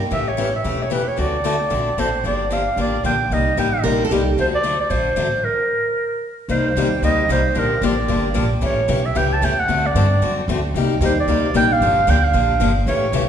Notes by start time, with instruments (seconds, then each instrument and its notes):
0.11 upright bass A1, steel-string acoustic guitar C#3 E3 A3 C#4 G4, clarinet E5
0.28 clarinet C#5
0.37 steel-string acoustic guitar C#3 E3 A3 C#4 G4
0.55 clarinet E5
0.64 upright bass E1, steel-string acoustic guitar C#3 E3 A3 C#4 G4
0.82 clarinet C#5
0.90 steel-string acoustic guitar C#3 E3 A3 C#4 G4, clarinet B4
1.08 clarinet C#5
1.16 upright bass D2, steel-string acoustic guitar D3 A3 C4 F#4 A4, clarinet D5
1.44 steel-string acoustic guitar D3 A3 C4 F#4 A4
1.70 upright bass A#1, steel-string acoustic guitar D3 A3 C4 F#4 A4
1.97 upright bass A1, steel-string acoustic guitar D3 A3 C4 F#4 A4, clarinet C5
2.24 upright bass G1, steel-string acoustic guitar D3 F3 A#3 D4 G4, clarinet D5
2.50 steel-string acoustic guitar D3 F3 A#3 D4 G4, clarinet F5
2.76 upright bass A1, steel-string acoustic guitar D3 F3 A#3 D4 G4
2.81 clarinet D5
3.03 upright bass A#1, steel-string acoustic guitar D3 F3 A#3 D4 G4, clarinet G5
3.30 upright bass C2, steel-string acoustic guitar C3 G3 A#3 D#4 G4, clarinet D#5
3.57 upright bass A1, steel-string acoustic guitar C3 G3 A#3 D#4 G4, clarinet G5
3.83 upright bass A#1, steel-string acoustic guitar C3 G3 A#3 D#4 G4 A#4
4.05 steel-string acoustic guitar A4
4.10 upright bass C2, steel-string acoustic guitar C3 G3 A#3 D#4 G4
4.37 upright bass D2, steel-string acoustic guitar D3 F#3 A3 D4 F#4, clarinet C5
4.55 clarinet D5
4.63 steel-string acoustic guitar D3 F#3 A3 D4 F#4
4.80 clarinet D5
4.90 upright bass A#1, steel-string acoustic guitar D3 F#3 A3 D4 F#4, clarinet C5
5.16 upright bass A1, steel-string acoustic guitar D3 F#3 A3 D4 F#4
5.44 clarinet A#4
6.48 upright bass C2, steel-string acoustic guitar C3 G3 A#3 D#4 G4, clarinet C5
6.76 upright bass D#2, steel-string acoustic guitar C3 G3 A#3 D#4 G4
7.02 upright bass D2, steel-string acoustic guitar C3 G3 A#3 D#4 G4, clarinet D#5
7.29 upright bass C2, steel-string acoustic guitar C3 G3 A#3 D#4 G4, clarinet C5
7.55 upright bass A#1, steel-string acoustic guitar D3 F3 A#3 D4 G4, clarinet A#4
7.81 upright bass A1, steel-string acoustic guitar D3 F3 A#3 D4 G4, clarinet D5
8.08 upright bass G1, steel-string acoustic guitar D3 F3 A#3 D4 G4
8.34 upright bass A#1, steel-string acoustic guitar D3 F3 A#3 D4 G4
8.61 upright bass A1, steel-string acoustic guitar C#3 E3 A3 C#4 G4, clarinet C#5
8.88 upright bass B1, steel-string acoustic guitar C#3 E3 A3 C#4 G4
9.06 clarinet E5
9.15 upright bass C#2, steel-string acoustic guitar C#3 E3 A3 C#4 G4, clarinet G5
9.27 clarinet G5
9.33 clarinet A5
9.42 upright bass E2, steel-string acoustic guitar C#3 E3 A3 C#4 G4, clarinet G5
9.59 clarinet F#5
9.68 upright bass D2, steel-string acoustic guitar D3 A3 C4 F#4 A4
9.86 clarinet D5
9.95 upright bass G2, steel-string acoustic guitar D3 A3 C4 F#4 A4
10.21 upright bass F#2, steel-string acoustic guitar D3 A3 C4 F#4 A4
10.48 upright bass D2, steel-string acoustic guitar D3 A3 C4 F#4 A4
10.74 upright bass C2, steel-string acoustic guitar C3 G3 A#3 D#4 G4
11.01 upright bass D#2, steel-string acoustic guitar C3 G3 A#3 D#4 G4
11.05 clarinet C5
11.20 clarinet D5
11.27 upright bass D2, steel-string acoustic guitar C3 G3 A#3 D#4 G4
11.54 upright bass A#1, steel-string acoustic guitar C3 G3 A#3 D#4 G4, clarinet G5
11.72 clarinet F5
11.81 upright bass G1, steel-string acoustic guitar D3 F3 A#3 D4 G4
12.07 upright bass D2, steel-string acoustic guitar D3 F3 A#3 D4 G4, clarinet G5
12.24 clarinet F5
12.33 upright bass A#1, steel-string acoustic guitar D3 F3 A#3 D4 G4
12.60 upright bass G1, steel-string acoustic guitar D3 F3 A#3 D4 G4
12.86 upright bass A1, steel-string acoustic guitar C#3 E3 A3 C#4 G4, clarinet C#5
13.12 upright bass B1, steel-string acoustic guitar C#3 E3 A3 C#4 G4